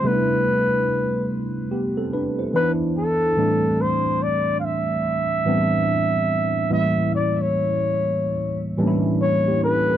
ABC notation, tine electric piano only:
X:1
M:4/4
L:1/16
Q:"Swing 16ths" 1/4=72
K:Am
V:1 name="Tine electric piano"
z8 [B,G] [CA] [DB] [Ec]2 z3 | z16 | z12 z [_B,G] [^CA] [C_B] |]
V:2 name="Tine electric piano"
[C,G,A,B,D_E=E]8 z4 [E,B,D_E=E]4 | [A,,E,G,A,CD]8 z2 [A,,E,G,B,CD]6 | [A,,E,G,_B,^CE]8 z2 [A,,E,G,B,CDE]6 |]